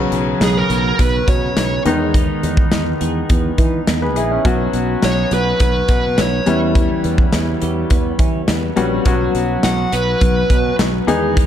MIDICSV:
0, 0, Header, 1, 6, 480
1, 0, Start_track
1, 0, Key_signature, 5, "major"
1, 0, Tempo, 576923
1, 1780, Time_signature, 4, 2, 24, 8
1, 9538, End_track
2, 0, Start_track
2, 0, Title_t, "Lead electric guitar"
2, 0, Program_c, 0, 29
2, 363, Note_on_c, 0, 68, 65
2, 477, Note_off_c, 0, 68, 0
2, 477, Note_on_c, 0, 70, 80
2, 829, Note_off_c, 0, 70, 0
2, 835, Note_on_c, 0, 71, 85
2, 1069, Note_off_c, 0, 71, 0
2, 1072, Note_on_c, 0, 73, 86
2, 1513, Note_off_c, 0, 73, 0
2, 4198, Note_on_c, 0, 73, 87
2, 4436, Note_off_c, 0, 73, 0
2, 4442, Note_on_c, 0, 71, 85
2, 4655, Note_off_c, 0, 71, 0
2, 4678, Note_on_c, 0, 71, 83
2, 4912, Note_off_c, 0, 71, 0
2, 4922, Note_on_c, 0, 71, 78
2, 5157, Note_off_c, 0, 71, 0
2, 5161, Note_on_c, 0, 73, 79
2, 5486, Note_off_c, 0, 73, 0
2, 8026, Note_on_c, 0, 78, 90
2, 8264, Note_on_c, 0, 71, 80
2, 8270, Note_off_c, 0, 78, 0
2, 8949, Note_off_c, 0, 71, 0
2, 9538, End_track
3, 0, Start_track
3, 0, Title_t, "Grand piano"
3, 0, Program_c, 1, 0
3, 0, Note_on_c, 1, 49, 79
3, 0, Note_on_c, 1, 54, 74
3, 0, Note_on_c, 1, 59, 75
3, 0, Note_on_c, 1, 61, 86
3, 33, Control_c, 1, 64, 127
3, 746, Note_off_c, 1, 49, 0
3, 748, Note_off_c, 1, 54, 0
3, 750, Note_off_c, 1, 59, 0
3, 751, Note_off_c, 1, 61, 0
3, 1543, Note_on_c, 1, 51, 71
3, 1543, Note_on_c, 1, 56, 66
3, 1546, Note_on_c, 1, 59, 67
3, 1550, Note_on_c, 1, 63, 84
3, 1551, Control_c, 1, 64, 0
3, 1709, Control_c, 1, 64, 127
3, 2429, Note_off_c, 1, 51, 0
3, 2429, Note_off_c, 1, 56, 0
3, 2431, Note_off_c, 1, 59, 0
3, 2433, Note_off_c, 1, 63, 0
3, 3346, Note_on_c, 1, 71, 56
3, 3349, Note_on_c, 1, 68, 45
3, 3449, Note_off_c, 1, 68, 0
3, 3457, Note_off_c, 1, 71, 0
3, 3461, Note_on_c, 1, 68, 69
3, 3464, Note_on_c, 1, 64, 57
3, 3569, Note_off_c, 1, 64, 0
3, 3575, Note_off_c, 1, 68, 0
3, 3582, Note_on_c, 1, 64, 55
3, 3589, Note_on_c, 1, 61, 48
3, 3695, Note_off_c, 1, 61, 0
3, 3700, Note_on_c, 1, 54, 82
3, 3702, Note_on_c, 1, 59, 77
3, 3708, Note_on_c, 1, 61, 72
3, 3710, Control_c, 1, 64, 0
3, 3710, Note_on_c, 1, 66, 86
3, 3809, Note_off_c, 1, 64, 0
3, 3843, Control_c, 1, 64, 127
3, 4587, Note_off_c, 1, 54, 0
3, 4589, Note_off_c, 1, 59, 0
3, 4591, Note_off_c, 1, 61, 0
3, 4593, Note_off_c, 1, 66, 0
3, 5376, Note_on_c, 1, 55, 71
3, 5380, Note_on_c, 1, 59, 64
3, 5385, Note_on_c, 1, 61, 69
3, 5386, Note_on_c, 1, 64, 78
3, 5391, Control_c, 1, 64, 0
3, 5515, Control_c, 1, 64, 127
3, 6266, Note_off_c, 1, 55, 0
3, 6268, Note_off_c, 1, 59, 0
3, 6270, Note_off_c, 1, 61, 0
3, 6271, Note_off_c, 1, 64, 0
3, 7290, Note_on_c, 1, 55, 81
3, 7294, Note_on_c, 1, 59, 73
3, 7298, Note_on_c, 1, 61, 77
3, 7300, Note_on_c, 1, 66, 88
3, 7517, Note_off_c, 1, 55, 0
3, 7519, Note_off_c, 1, 59, 0
3, 7521, Note_off_c, 1, 61, 0
3, 7522, Note_off_c, 1, 66, 0
3, 7533, Note_on_c, 1, 54, 78
3, 7537, Note_on_c, 1, 59, 73
3, 7542, Note_on_c, 1, 61, 76
3, 7542, Note_on_c, 1, 66, 94
3, 7550, Control_c, 1, 64, 0
3, 7691, Control_c, 1, 64, 127
3, 8424, Note_off_c, 1, 54, 0
3, 8426, Note_off_c, 1, 59, 0
3, 8428, Note_off_c, 1, 61, 0
3, 8429, Note_off_c, 1, 66, 0
3, 9211, Note_on_c, 1, 56, 81
3, 9215, Note_on_c, 1, 59, 74
3, 9217, Note_on_c, 1, 63, 74
3, 9219, Note_on_c, 1, 68, 100
3, 9230, Control_c, 1, 64, 0
3, 9399, Control_c, 1, 64, 127
3, 9538, Note_off_c, 1, 56, 0
3, 9538, Note_off_c, 1, 59, 0
3, 9538, Note_off_c, 1, 63, 0
3, 9538, Note_off_c, 1, 68, 0
3, 9538, End_track
4, 0, Start_track
4, 0, Title_t, "Clean electric guitar"
4, 0, Program_c, 2, 27
4, 0, Note_on_c, 2, 54, 73
4, 0, Note_on_c, 2, 59, 55
4, 102, Note_off_c, 2, 59, 0
4, 105, Note_on_c, 2, 59, 55
4, 347, Note_on_c, 2, 61, 55
4, 589, Note_on_c, 2, 66, 59
4, 822, Note_off_c, 2, 59, 0
4, 825, Note_on_c, 2, 59, 62
4, 1054, Note_off_c, 2, 61, 0
4, 1064, Note_on_c, 2, 61, 59
4, 1304, Note_off_c, 2, 59, 0
4, 1307, Note_on_c, 2, 59, 57
4, 1541, Note_off_c, 2, 54, 0
4, 1546, Note_on_c, 2, 51, 73
4, 1590, Note_off_c, 2, 61, 0
4, 1593, Note_off_c, 2, 66, 0
4, 1776, Note_off_c, 2, 51, 0
4, 1786, Note_on_c, 2, 51, 74
4, 2026, Note_off_c, 2, 59, 0
4, 2030, Note_on_c, 2, 59, 52
4, 2271, Note_on_c, 2, 63, 51
4, 2505, Note_on_c, 2, 68, 64
4, 2748, Note_off_c, 2, 59, 0
4, 2752, Note_on_c, 2, 59, 66
4, 2980, Note_off_c, 2, 63, 0
4, 2990, Note_on_c, 2, 63, 58
4, 3223, Note_off_c, 2, 59, 0
4, 3227, Note_on_c, 2, 59, 58
4, 3456, Note_off_c, 2, 63, 0
4, 3466, Note_on_c, 2, 63, 56
4, 3700, Note_off_c, 2, 51, 0
4, 3703, Note_on_c, 2, 54, 75
4, 3751, Note_off_c, 2, 63, 0
4, 3751, Note_off_c, 2, 68, 0
4, 3941, Note_off_c, 2, 59, 0
4, 3945, Note_on_c, 2, 59, 58
4, 4183, Note_on_c, 2, 61, 54
4, 4422, Note_on_c, 2, 66, 60
4, 4656, Note_off_c, 2, 59, 0
4, 4659, Note_on_c, 2, 59, 67
4, 4901, Note_off_c, 2, 61, 0
4, 4904, Note_off_c, 2, 59, 0
4, 4904, Note_on_c, 2, 59, 57
4, 5019, Note_off_c, 2, 59, 0
4, 5019, Note_on_c, 2, 61, 48
4, 5138, Note_on_c, 2, 59, 57
4, 5376, Note_off_c, 2, 54, 0
4, 5379, Note_on_c, 2, 52, 75
4, 5428, Note_off_c, 2, 61, 0
4, 5429, Note_off_c, 2, 66, 0
4, 5611, Note_off_c, 2, 52, 0
4, 5621, Note_on_c, 2, 52, 76
4, 5856, Note_off_c, 2, 59, 0
4, 5859, Note_on_c, 2, 59, 54
4, 6097, Note_on_c, 2, 61, 52
4, 6336, Note_on_c, 2, 67, 60
4, 6575, Note_off_c, 2, 59, 0
4, 6578, Note_on_c, 2, 59, 62
4, 6817, Note_off_c, 2, 61, 0
4, 6820, Note_on_c, 2, 61, 56
4, 7056, Note_off_c, 2, 59, 0
4, 7060, Note_on_c, 2, 59, 55
4, 7299, Note_off_c, 2, 61, 0
4, 7302, Note_on_c, 2, 61, 54
4, 7537, Note_off_c, 2, 52, 0
4, 7540, Note_on_c, 2, 54, 75
4, 7586, Note_off_c, 2, 67, 0
4, 7589, Note_off_c, 2, 61, 0
4, 7779, Note_off_c, 2, 59, 0
4, 7783, Note_on_c, 2, 59, 55
4, 8019, Note_on_c, 2, 61, 53
4, 8258, Note_on_c, 2, 66, 60
4, 8493, Note_off_c, 2, 59, 0
4, 8496, Note_on_c, 2, 59, 64
4, 8728, Note_off_c, 2, 61, 0
4, 8738, Note_on_c, 2, 61, 58
4, 8969, Note_off_c, 2, 59, 0
4, 8972, Note_on_c, 2, 59, 60
4, 9214, Note_off_c, 2, 54, 0
4, 9217, Note_on_c, 2, 51, 73
4, 9267, Note_off_c, 2, 61, 0
4, 9267, Note_off_c, 2, 66, 0
4, 9446, Note_off_c, 2, 51, 0
4, 9456, Note_on_c, 2, 51, 74
4, 9538, Note_off_c, 2, 51, 0
4, 9538, Note_off_c, 2, 59, 0
4, 9538, End_track
5, 0, Start_track
5, 0, Title_t, "Fretless electric bass"
5, 0, Program_c, 3, 35
5, 96, Note_on_c, 3, 35, 86
5, 271, Note_off_c, 3, 35, 0
5, 335, Note_on_c, 3, 35, 83
5, 510, Note_off_c, 3, 35, 0
5, 577, Note_on_c, 3, 35, 88
5, 751, Note_off_c, 3, 35, 0
5, 824, Note_on_c, 3, 35, 100
5, 996, Note_off_c, 3, 35, 0
5, 1061, Note_on_c, 3, 47, 85
5, 1234, Note_off_c, 3, 47, 0
5, 1301, Note_on_c, 3, 35, 88
5, 1473, Note_off_c, 3, 35, 0
5, 1541, Note_on_c, 3, 40, 87
5, 1886, Note_off_c, 3, 40, 0
5, 2023, Note_on_c, 3, 40, 87
5, 2195, Note_off_c, 3, 40, 0
5, 2259, Note_on_c, 3, 40, 89
5, 2432, Note_off_c, 3, 40, 0
5, 2501, Note_on_c, 3, 40, 82
5, 2673, Note_off_c, 3, 40, 0
5, 2745, Note_on_c, 3, 40, 99
5, 2916, Note_off_c, 3, 40, 0
5, 2979, Note_on_c, 3, 52, 94
5, 3152, Note_off_c, 3, 52, 0
5, 3222, Note_on_c, 3, 40, 86
5, 3459, Note_off_c, 3, 40, 0
5, 3459, Note_on_c, 3, 34, 83
5, 3632, Note_off_c, 3, 34, 0
5, 3702, Note_on_c, 3, 35, 91
5, 3874, Note_off_c, 3, 35, 0
5, 3938, Note_on_c, 3, 35, 92
5, 4111, Note_off_c, 3, 35, 0
5, 4181, Note_on_c, 3, 35, 96
5, 4354, Note_off_c, 3, 35, 0
5, 4418, Note_on_c, 3, 35, 89
5, 4591, Note_off_c, 3, 35, 0
5, 4661, Note_on_c, 3, 35, 103
5, 4834, Note_off_c, 3, 35, 0
5, 4896, Note_on_c, 3, 47, 80
5, 5141, Note_on_c, 3, 35, 95
5, 5154, Note_off_c, 3, 47, 0
5, 5314, Note_off_c, 3, 35, 0
5, 5383, Note_on_c, 3, 40, 93
5, 5727, Note_off_c, 3, 40, 0
5, 5860, Note_on_c, 3, 40, 84
5, 6033, Note_off_c, 3, 40, 0
5, 6100, Note_on_c, 3, 40, 87
5, 6273, Note_off_c, 3, 40, 0
5, 6341, Note_on_c, 3, 40, 86
5, 6513, Note_off_c, 3, 40, 0
5, 6577, Note_on_c, 3, 40, 100
5, 6751, Note_off_c, 3, 40, 0
5, 6816, Note_on_c, 3, 52, 85
5, 6990, Note_off_c, 3, 52, 0
5, 7056, Note_on_c, 3, 40, 89
5, 7230, Note_off_c, 3, 40, 0
5, 7296, Note_on_c, 3, 34, 86
5, 7470, Note_off_c, 3, 34, 0
5, 7535, Note_on_c, 3, 35, 89
5, 7709, Note_off_c, 3, 35, 0
5, 7773, Note_on_c, 3, 35, 92
5, 7948, Note_off_c, 3, 35, 0
5, 8015, Note_on_c, 3, 35, 89
5, 8189, Note_off_c, 3, 35, 0
5, 8255, Note_on_c, 3, 35, 85
5, 8430, Note_off_c, 3, 35, 0
5, 8498, Note_on_c, 3, 35, 103
5, 8672, Note_off_c, 3, 35, 0
5, 8734, Note_on_c, 3, 47, 84
5, 8909, Note_off_c, 3, 47, 0
5, 8974, Note_on_c, 3, 35, 84
5, 9149, Note_off_c, 3, 35, 0
5, 9214, Note_on_c, 3, 40, 93
5, 9538, Note_off_c, 3, 40, 0
5, 9538, End_track
6, 0, Start_track
6, 0, Title_t, "Drums"
6, 99, Note_on_c, 9, 42, 58
6, 183, Note_off_c, 9, 42, 0
6, 342, Note_on_c, 9, 38, 89
6, 343, Note_on_c, 9, 42, 96
6, 425, Note_off_c, 9, 38, 0
6, 426, Note_off_c, 9, 42, 0
6, 582, Note_on_c, 9, 42, 59
6, 666, Note_off_c, 9, 42, 0
6, 825, Note_on_c, 9, 36, 79
6, 825, Note_on_c, 9, 42, 87
6, 908, Note_off_c, 9, 42, 0
6, 909, Note_off_c, 9, 36, 0
6, 1063, Note_on_c, 9, 36, 85
6, 1064, Note_on_c, 9, 42, 66
6, 1146, Note_off_c, 9, 36, 0
6, 1147, Note_off_c, 9, 42, 0
6, 1304, Note_on_c, 9, 38, 90
6, 1304, Note_on_c, 9, 42, 92
6, 1387, Note_off_c, 9, 38, 0
6, 1387, Note_off_c, 9, 42, 0
6, 1544, Note_on_c, 9, 42, 59
6, 1627, Note_off_c, 9, 42, 0
6, 1783, Note_on_c, 9, 36, 89
6, 1784, Note_on_c, 9, 42, 88
6, 1866, Note_off_c, 9, 36, 0
6, 1867, Note_off_c, 9, 42, 0
6, 2025, Note_on_c, 9, 42, 56
6, 2108, Note_off_c, 9, 42, 0
6, 2140, Note_on_c, 9, 36, 94
6, 2224, Note_off_c, 9, 36, 0
6, 2259, Note_on_c, 9, 38, 89
6, 2260, Note_on_c, 9, 42, 90
6, 2342, Note_off_c, 9, 38, 0
6, 2343, Note_off_c, 9, 42, 0
6, 2503, Note_on_c, 9, 42, 61
6, 2586, Note_off_c, 9, 42, 0
6, 2742, Note_on_c, 9, 42, 84
6, 2744, Note_on_c, 9, 36, 86
6, 2825, Note_off_c, 9, 42, 0
6, 2828, Note_off_c, 9, 36, 0
6, 2980, Note_on_c, 9, 42, 63
6, 2981, Note_on_c, 9, 36, 82
6, 3063, Note_off_c, 9, 42, 0
6, 3065, Note_off_c, 9, 36, 0
6, 3223, Note_on_c, 9, 42, 96
6, 3224, Note_on_c, 9, 38, 96
6, 3307, Note_off_c, 9, 38, 0
6, 3307, Note_off_c, 9, 42, 0
6, 3463, Note_on_c, 9, 42, 61
6, 3546, Note_off_c, 9, 42, 0
6, 3702, Note_on_c, 9, 36, 95
6, 3703, Note_on_c, 9, 42, 84
6, 3785, Note_off_c, 9, 36, 0
6, 3786, Note_off_c, 9, 42, 0
6, 3939, Note_on_c, 9, 42, 56
6, 4022, Note_off_c, 9, 42, 0
6, 4181, Note_on_c, 9, 38, 97
6, 4182, Note_on_c, 9, 42, 94
6, 4264, Note_off_c, 9, 38, 0
6, 4265, Note_off_c, 9, 42, 0
6, 4420, Note_on_c, 9, 42, 57
6, 4503, Note_off_c, 9, 42, 0
6, 4657, Note_on_c, 9, 42, 84
6, 4661, Note_on_c, 9, 36, 86
6, 4740, Note_off_c, 9, 42, 0
6, 4745, Note_off_c, 9, 36, 0
6, 4895, Note_on_c, 9, 42, 62
6, 4898, Note_on_c, 9, 36, 86
6, 4978, Note_off_c, 9, 42, 0
6, 4981, Note_off_c, 9, 36, 0
6, 5140, Note_on_c, 9, 42, 94
6, 5141, Note_on_c, 9, 38, 94
6, 5224, Note_off_c, 9, 38, 0
6, 5224, Note_off_c, 9, 42, 0
6, 5378, Note_on_c, 9, 42, 60
6, 5461, Note_off_c, 9, 42, 0
6, 5619, Note_on_c, 9, 36, 96
6, 5619, Note_on_c, 9, 42, 81
6, 5702, Note_off_c, 9, 36, 0
6, 5702, Note_off_c, 9, 42, 0
6, 5858, Note_on_c, 9, 42, 57
6, 5941, Note_off_c, 9, 42, 0
6, 5975, Note_on_c, 9, 36, 89
6, 6058, Note_off_c, 9, 36, 0
6, 6095, Note_on_c, 9, 38, 92
6, 6095, Note_on_c, 9, 42, 94
6, 6178, Note_off_c, 9, 38, 0
6, 6179, Note_off_c, 9, 42, 0
6, 6336, Note_on_c, 9, 42, 62
6, 6419, Note_off_c, 9, 42, 0
6, 6575, Note_on_c, 9, 42, 89
6, 6579, Note_on_c, 9, 36, 85
6, 6658, Note_off_c, 9, 42, 0
6, 6662, Note_off_c, 9, 36, 0
6, 6813, Note_on_c, 9, 42, 66
6, 6815, Note_on_c, 9, 36, 88
6, 6896, Note_off_c, 9, 42, 0
6, 6898, Note_off_c, 9, 36, 0
6, 7054, Note_on_c, 9, 38, 93
6, 7054, Note_on_c, 9, 42, 94
6, 7137, Note_off_c, 9, 38, 0
6, 7137, Note_off_c, 9, 42, 0
6, 7294, Note_on_c, 9, 42, 60
6, 7377, Note_off_c, 9, 42, 0
6, 7533, Note_on_c, 9, 42, 86
6, 7535, Note_on_c, 9, 36, 96
6, 7616, Note_off_c, 9, 42, 0
6, 7618, Note_off_c, 9, 36, 0
6, 7777, Note_on_c, 9, 42, 57
6, 7860, Note_off_c, 9, 42, 0
6, 8014, Note_on_c, 9, 38, 93
6, 8015, Note_on_c, 9, 42, 90
6, 8097, Note_off_c, 9, 38, 0
6, 8098, Note_off_c, 9, 42, 0
6, 8257, Note_on_c, 9, 42, 63
6, 8341, Note_off_c, 9, 42, 0
6, 8496, Note_on_c, 9, 42, 86
6, 8499, Note_on_c, 9, 36, 86
6, 8579, Note_off_c, 9, 42, 0
6, 8582, Note_off_c, 9, 36, 0
6, 8735, Note_on_c, 9, 42, 69
6, 8736, Note_on_c, 9, 36, 82
6, 8818, Note_off_c, 9, 42, 0
6, 8819, Note_off_c, 9, 36, 0
6, 8979, Note_on_c, 9, 38, 96
6, 8979, Note_on_c, 9, 42, 88
6, 9062, Note_off_c, 9, 38, 0
6, 9062, Note_off_c, 9, 42, 0
6, 9220, Note_on_c, 9, 42, 60
6, 9304, Note_off_c, 9, 42, 0
6, 9459, Note_on_c, 9, 36, 95
6, 9460, Note_on_c, 9, 42, 87
6, 9538, Note_off_c, 9, 36, 0
6, 9538, Note_off_c, 9, 42, 0
6, 9538, End_track
0, 0, End_of_file